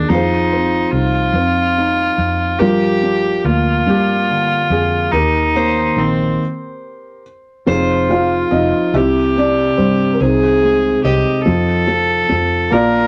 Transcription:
Already playing: felt piano D#3 A#3 G4 G#4
0.08 fingered electric bass F2, felt piano F3, viola D#4, steel-string acoustic guitar F4
0.14 felt piano G#4 C5
0.53 felt piano C4
0.91 fingered electric bass C2, felt piano D#4, viola F4
1.33 fingered electric bass F2, felt piano C4
1.78 felt piano D#4
2.18 fingered electric bass F2
2.59 fingered electric bass G2, felt piano F3 F4 A#4, viola G4
3.03 felt piano D4
3.44 fingered electric bass D2, felt piano A#3, viola F4
3.86 fingered electric bass G2, felt piano D4 G4
4.30 felt piano D3
4.70 fingered electric bass F2, felt piano G#4
5.12 fingered electric bass D#2, felt piano D#3 G4 A#4, viola D#4
5.55 felt piano A#3, steel-string acoustic guitar C5
5.96 fingered electric bass A#1, felt piano D#3, viola C4
7.66 fingered electric bass F1, felt piano F3 C4 D#4 G#4 C5, viola F4, steel-string acoustic guitar C5
8.10 felt piano F3 F4 F5
8.51 fingered electric bass F1, felt piano F3 D#4 D#5
8.93 fingered electric bass C2, felt piano C3 E4 G4 E5, viola G4
9.36 felt piano G3 D4 D5
9.77 fingered electric bass G2, felt piano C3 C4 C5
10.14 felt piano A#4
10.20 fingered electric bass C2, felt piano C3 C4 D#4 G#4 C5, viola G#4
10.64 felt piano G#3
11.04 fingered electric bass C2, felt piano C3, viola G4, steel-string acoustic guitar D#5
11.43 fingered electric bass F2, felt piano F3, viola A4
11.88 felt piano F3
12.29 fingered electric bass F2, felt piano F3
12.70 fingered electric bass A#1, felt piano A#3 D4 F4 D5, viola A#4

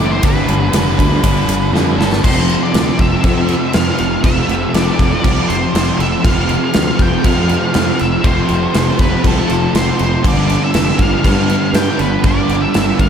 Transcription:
Already playing: distorted electric guitar A2 A3, overdriven electric guitar E3 C4 E4, lead electric guitar D5
0.00 fingered electric bass F#1, overdriven electric guitar A2 A3, distorted electric guitar E3
0.12 lead electric guitar C5
0.21 fingered electric bass G1, distorted electric guitar G2 D3 G3, overdriven electric guitar G2 D3 F3 B3 D4, kick, ride
0.26 lead electric guitar B4
0.46 fingered electric bass G1, distorted electric guitar D3 G3, overdriven electric guitar F3 B3 D4, ride
0.71 fingered electric bass F1, distorted electric guitar G2 D3 G3, overdriven electric guitar D3 F3 B3, snare, ride
0.75 overdriven electric guitar D4
0.97 fingered electric bass D2, overdriven electric guitar G2 D3 F3 G3 B3 D4, kick, ride
1.23 fingered electric bass G1, overdriven electric guitar G2 D3 F3 G3 B3 D4, kick, ride
1.46 fingered electric bass G1, distorted electric guitar D3 G3, ride
1.72 fingered electric bass F2, distorted electric guitar G2 D3 G3, overdriven electric guitar D3 F3 B3 D4, snare
1.98 fingered electric bass G1, overdriven electric guitar G2 F3 B3 D4, distorted electric guitar D3 G3, lead electric guitar A4, snare
2.13 snare
2.22 fingered electric bass F1, distorted electric guitar F2 C3 F3, overdriven electric guitar F2 C3 F3 A3 C4, lead electric guitar C5, kick, crash
2.49 crash
2.63 lead electric guitar D5
2.72 fingered electric bass D2, distorted electric guitar F2 C3 F3, snare, crash
2.99 fingered electric bass F1, lead electric guitar E5, kick, crash
3.21 distorted electric guitar F2 C3 F3, overdriven electric guitar F2 C3 F3, fingered electric bass F2, kick, crash
3.25 overdriven electric guitar A3 C4
3.48 distorted electric guitar C3 F3, crash
3.72 distorted electric guitar F2 C3 F3, fingered electric bass F2, lead electric guitar F5, snare, crash
3.98 fingered electric bass F1, crash
4.23 fingered electric bass F1, distorted electric guitar F2 C3 F3, overdriven electric guitar F2 C3 F3 A3 C4, lead electric guitar E5, kick, crash
4.49 fingered electric bass F1, crash
4.72 fingered electric bass F1, distorted electric guitar F2 C3 F3, lead electric guitar D5, snare, crash
4.99 fingered electric bass F1, kick, crash
5.22 fingered electric bass C2, overdriven electric guitar F2 C3 F3 A3 C4, distorted electric guitar F2 C3 F3, lead electric guitar D5, kick, crash
5.48 fingered electric bass F1, distorted electric guitar C3 F3, lead electric guitar C5, crash
5.73 fingered electric bass F1, distorted electric guitar F2 C3 F3, snare, crash
5.99 fingered electric bass F1, lead electric guitar E5, crash
6.23 fingered electric bass F1, overdriven electric guitar F2 C3 F3 A3 C4, distorted electric guitar F2 C3 F3, lead electric guitar F5, kick, crash
6.49 crash
6.64 lead electric guitar F5
6.72 fingered electric bass D2, distorted electric guitar F2 C3 F3, snare, crash
6.99 fingered electric bass F1, lead electric guitar G5, kick, crash
7.23 distorted electric guitar F2 C3 F3, overdriven electric guitar F2 C3 F3 A3 C4, fingered electric bass F2, lead electric guitar F5, kick, crash
7.48 distorted electric guitar C3 F3, crash
7.73 distorted electric guitar F2 C3 F3, fingered electric bass F2, snare, crash
7.99 fingered electric bass F1, lead electric guitar E5, crash
8.21 fingered electric bass F1, overdriven electric guitar F2 C3 F3 A3 C4, distorted electric guitar F2 C3 F3, lead electric guitar C5, kick, crash
8.49 fingered electric bass F1, crash
8.73 fingered electric bass F1, distorted electric guitar F2 C3 F3, snare, crash
8.99 fingered electric bass F1, lead electric guitar B4, kick, crash
9.22 fingered electric bass C2, overdriven electric guitar F2 C3 F3 A3 C4, distorted electric guitar F2 C3, kick, crash
9.27 distorted electric guitar F3, lead electric guitar A4
9.48 fingered electric bass F1, distorted electric guitar C3 F3, crash
9.74 fingered electric bass F1, distorted electric guitar F2 C3 F3, lead electric guitar C5, snare, crash
9.99 fingered electric bass F1, lead electric guitar C5, crash
10.23 fingered electric bass G1, distorted electric guitar G2 D3 G3, overdriven electric guitar G2 D3 F3 B3 D4, kick, crash
10.28 lead electric guitar D5
10.50 crash
10.64 lead electric guitar E5
10.73 fingered electric bass F1, distorted electric guitar G2 D3 G3, snare, crash
10.99 fingered electric bass G1, lead electric guitar F5, kick, crash
11.22 distorted electric guitar G2 D3 G3, overdriven electric guitar G2 D3 F3 B3, fingered electric bass G2, kick, crash
11.26 overdriven electric guitar D4
11.47 distorted electric guitar D3 G3, crash
11.73 distorted electric guitar G2 D3 G3, fingered electric bass G2, lead electric guitar G5, snare, crash
11.99 fingered electric bass G1, lead electric guitar B4, crash
12.23 fingered electric bass G1, distorted electric guitar G2 D3 G3, overdriven electric guitar G2 D3 F3 B3 D4, lead electric guitar D5, kick, crash
12.49 fingered electric bass G1, crash
12.62 lead electric guitar E5
12.73 fingered electric bass G1, distorted electric guitar G2 D3 G3, snare, crash
12.99 fingered electric bass G1, lead electric guitar F5, kick, crash

